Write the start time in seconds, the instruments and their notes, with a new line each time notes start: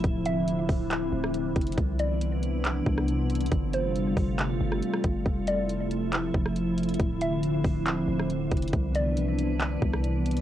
Already playing: ambient pad F3 E4
0.04 808-style bass D1, ambient pad D3 C4, kick, closed hi-hat
0.26 synth pluck E5, closed hi-hat
0.48 closed hi-hat
0.69 808-style bass D1, kick, open hi-hat
0.91 clap, closed hi-hat
1.13 808-style bass D1
1.24 cross-stick
1.34 closed hi-hat
1.56 808-style bass F1, kick, closed hi-hat
1.62 closed hi-hat
1.67 closed hi-hat
1.72 closed hi-hat
1.78 808-style bass C2, ambient pad C3 E3 B3 D4, kick, closed hi-hat
1.99 synth pluck D5, closed hi-hat
2.22 closed hi-hat
2.43 closed hi-hat
2.65 clap, closed hi-hat
2.86 808-style bass C2, kick
2.98 cross-stick
3.08 closed hi-hat
3.30 closed hi-hat
3.35 closed hi-hat
3.41 closed hi-hat
3.46 closed hi-hat
3.51 808-style bass G1, ambient pad G3 A3 F4, kick, closed hi-hat
3.73 synth pluck C5, closed hi-hat
3.95 closed hi-hat
4.17 808-style bass G1, kick, open hi-hat
4.39 clap, closed hi-hat
4.61 808-style bass G1
4.72 cross-stick
4.82 closed hi-hat
4.93 cross-stick
5.04 808-style bass G1, kick, closed hi-hat
5.25 808-style bass F1, ambient pad F3 E4, kick, closed hi-hat
5.47 synth pluck D5, closed hi-hat
5.69 closed hi-hat
5.91 closed hi-hat
6.13 clap, closed hi-hat
6.34 808-style bass F1, kick
6.46 cross-stick
6.56 closed hi-hat
6.78 closed hi-hat
6.83 closed hi-hat
6.89 closed hi-hat
6.94 closed hi-hat
6.99 808-style bass D1, ambient pad D3 C4, kick, closed hi-hat
7.21 synth pluck E5, closed hi-hat
7.43 closed hi-hat
7.65 808-style bass D1, kick, open hi-hat
7.87 clap, closed hi-hat
8.08 808-style bass D1
8.20 cross-stick
8.30 closed hi-hat
8.52 808-style bass F1, kick, closed hi-hat
8.57 closed hi-hat
8.62 closed hi-hat
8.68 closed hi-hat
8.73 808-style bass C2, ambient pad C3 E3 B3 D4, kick, closed hi-hat
8.95 synth pluck D5, closed hi-hat
9.17 closed hi-hat
9.39 closed hi-hat
9.60 clap, closed hi-hat
9.82 808-style bass C2, kick
9.94 cross-stick
10.04 closed hi-hat
10.26 closed hi-hat
10.31 closed hi-hat
10.37 closed hi-hat